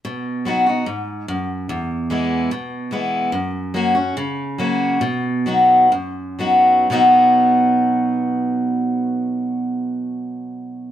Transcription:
\new Staff \with { instrumentName = "Steel-string acoustic guitar" } { \time 4/4 \key b \major \tempo 4 = 137 << { r4 <fis b dis' fis'>8 <dis' fis'>8 r2 | r4 <e gis b e'>4 r4 <e gis b e'>4 | r4 <fis ais cis' fis'>8 <cis' fis'>8 r4 <fis ais cis' fis'>4 | r4 <fis b dis' fis'>4 r4 <fis b dis' fis'>4 |
<b, fis b dis' fis'>1~ | <b, fis b dis' fis'>1 | } \\ { b,2 gis,4 fis,4 | e,2 b,2 | fis,2 cis2 | b,2 fis,2 |
r1 | r1 | } >> }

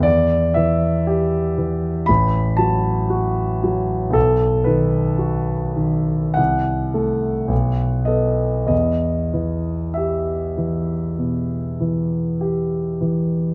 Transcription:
<<
  \new Staff \with { instrumentName = "Grand piano" } { \time 4/4 \key e \minor \tempo 4 = 53 d''8 e''4. b''8 a''4. | a'8 b'4. fis''4. dis''8 | dis''4 e''2~ e''8 r8 | }
  \new Staff \with { instrumentName = "Grand piano" } { \clef bass \time 4/4 \key e \minor e,8 e8 g'8 e8 a,,8 fis8 fis'8 fis8 | b,,8 dis8 fis'8 dis8 c,8 <a a'>8 b,,8 <b a'>8 | e,8 e8 g'8 e8 b,8 e8 g'8 e8 | }
>>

